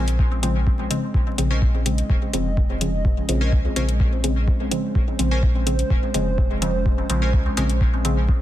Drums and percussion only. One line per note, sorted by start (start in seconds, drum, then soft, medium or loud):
0.08 closed hi-hat soft
0.19 kick loud
0.43 closed hi-hat medium
0.67 kick loud
0.91 closed hi-hat medium
1.14 kick loud
1.38 closed hi-hat medium
1.62 kick loud
1.86 closed hi-hat medium
1.98 closed hi-hat soft
2.10 kick loud
2.33 closed hi-hat medium
2.57 kick loud
2.81 closed hi-hat medium
3.05 kick loud
3.29 closed hi-hat medium
3.52 kick loud
3.76 closed hi-hat medium
3.89 closed hi-hat soft
4.00 kick loud
4.24 closed hi-hat medium
4.48 kick loud
4.71 closed hi-hat medium
4.95 kick loud
5.19 closed hi-hat medium
5.43 kick loud
5.67 closed hi-hat medium
5.79 closed hi-hat soft
5.90 kick loud
6.14 closed hi-hat medium
6.38 kick loud
6.62 closed hi-hat medium
6.86 kick loud
7.10 closed hi-hat medium
7.33 kick loud
7.57 closed hi-hat medium
7.70 closed hi-hat soft
7.81 kick loud
8.05 closed hi-hat medium
8.29 kick loud